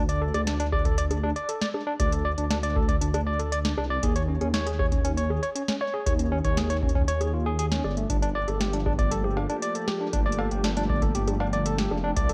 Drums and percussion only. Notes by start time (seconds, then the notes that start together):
0.09 closed hi-hat
0.34 closed hi-hat, high bongo
0.47 snare, closed hi-hat
0.60 closed hi-hat
0.73 kick, high bongo
0.85 kick, closed hi-hat
0.98 closed hi-hat
1.11 closed hi-hat, high bongo
1.23 high bongo
1.36 closed hi-hat
1.49 closed hi-hat
1.62 snare, closed hi-hat
1.74 high bongo
2.00 kick, closed hi-hat, high bongo
2.12 closed hi-hat
2.38 closed hi-hat
2.51 snare, closed hi-hat
2.63 closed hi-hat
2.76 kick
2.89 kick, closed hi-hat
3.01 closed hi-hat
3.14 closed hi-hat, high bongo
3.40 closed hi-hat
3.52 closed hi-hat
3.65 snare, closed hi-hat
3.78 high bongo
4.03 kick, closed hi-hat
4.16 closed hi-hat
4.41 closed hi-hat, high bongo
4.54 snare, closed hi-hat
4.67 closed hi-hat
4.79 kick, high bongo
4.92 kick, closed hi-hat
5.05 closed hi-hat
5.17 closed hi-hat
5.30 high bongo
5.43 closed hi-hat
5.56 closed hi-hat
5.68 snare, closed hi-hat
5.81 high bongo
6.06 kick, closed hi-hat, high bongo
6.19 closed hi-hat
6.45 kick, closed hi-hat
6.57 snare, closed hi-hat
6.70 closed hi-hat
6.83 kick
6.89 closed hi-hat
6.95 kick
6.99 kick
7.02 kick
7.05 kick, closed hi-hat
7.21 closed hi-hat, high bongo
7.59 closed hi-hat
7.72 snare, closed hi-hat
7.84 high bongo
7.97 closed hi-hat
8.10 kick, closed hi-hat
8.23 closed hi-hat
8.48 closed hi-hat, high bongo
8.61 snare, closed hi-hat
8.73 closed hi-hat
8.86 kick, high bongo
8.99 kick, closed hi-hat
9.11 closed hi-hat
9.24 high bongo
9.37 cowbell, high bongo
9.50 closed hi-hat
9.62 closed hi-hat
9.75 closed hi-hat
9.88 snare, high bongo
10.13 kick, closed hi-hat, high bongo
10.32 closed hi-hat
10.39 cowbell
10.51 closed hi-hat
10.64 snare, closed hi-hat
10.77 closed hi-hat
10.89 kick
11.02 kick, closed hi-hat
11.15 closed hi-hat
11.28 closed hi-hat, high bongo
11.40 cowbell
11.53 closed hi-hat
11.66 closed hi-hat
11.78 snare, closed hi-hat
11.91 high bongo
12.17 kick, closed hi-hat
12.29 closed hi-hat